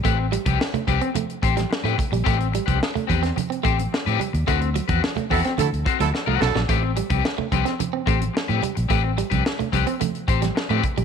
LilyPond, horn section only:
\new Staff \with { instrumentName = "Horn section" } { \time 4/4 \key a \dorian \tempo 4 = 108 r1 | r1 | r4. <e' fis' a'>16 r16 <e' fis' a'>16 r8 <e' fis' a'>16 r8 <e' fis' a'>8 | r1 |
r1 | }